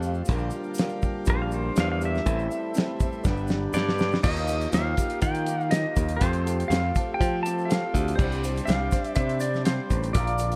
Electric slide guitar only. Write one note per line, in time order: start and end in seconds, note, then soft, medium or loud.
1.30 1.41 C5 loud
1.42 1.53 F5 medium
1.54 1.77 C5 medium
1.80 1.90 F5 medium
1.92 2.03 F5 medium
2.05 3.48 E5 medium
3.74 4.23 D5 medium
4.23 4.69 D#5 loud
4.74 5.22 F5 medium
5.22 5.73 G5 medium
5.71 6.22 D#5 medium
6.17 6.69 C5 loud
6.68 7.14 F5 loud
7.14 7.39 G5 loud
7.43 7.69 A5 medium
7.65 8.18 F5 medium
8.16 8.67 C5 loud
8.65 9.03 F5 medium
9.03 9.15 E5 medium
9.16 9.39 E5 loud
9.40 9.63 D5 medium
9.66 10.11 C5 medium
10.13 10.56 D5 medium